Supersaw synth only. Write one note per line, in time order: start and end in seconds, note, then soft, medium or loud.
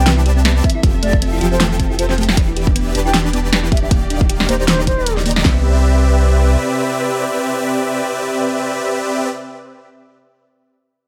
0.00 0.63 C4 loud
0.00 0.63 G4 medium
0.00 0.63 B4 medium
0.00 0.63 D5 medium
0.00 0.63 A5 loud
0.83 1.39 F3 medium
0.83 1.39 F4 medium
0.83 1.39 G4 medium
0.83 1.39 A4 medium
0.83 1.39 E5 medium
1.41 2.35 F3 loud
1.41 2.35 F4 medium
1.41 2.35 G4 medium
1.41 2.35 A4 medium
1.41 2.35 G5 loud
2.37 2.93 E3 medium
2.37 2.93 E5 medium
2.95 3.89 E3 medium
2.95 3.89 D4 medium
2.95 3.89 G4 medium
2.95 3.89 B4 medium
2.95 3.89 A5 loud
3.91 4.47 D#3 medium
3.91 4.47 D#4 medium
3.91 4.47 G4 medium
3.91 4.47 D5 medium
3.91 4.47 F5 medium
4.49 5.43 D#3 medium
4.49 5.43 D#4 medium
4.49 5.43 G4 medium
4.49 5.43 D5 medium
4.49 5.43 A#5 loud
5.45 9.29 C4 medium
5.45 9.29 G4 medium
5.45 9.29 B4 medium
5.45 9.29 E5 loud